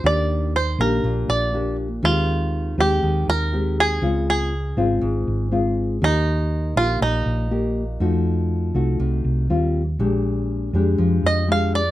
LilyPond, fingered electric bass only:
\new Staff \with { instrumentName = "Fingered electric bass" } { \clef bass \time 4/4 \key ees \major \tempo 4 = 121 ees,4. bes,,8 bes,,8 bes,,4. | ees,4. ees,8 ees,8 ees,4. | des,4. aes,,8 aes,,8 aes,,4. | ees,4. bes,,8 bes,,8 bes,,4. |
f,4. c,8 c,8 c,8 ees,4 | bes,,4. f,8 f,8 f,4. | }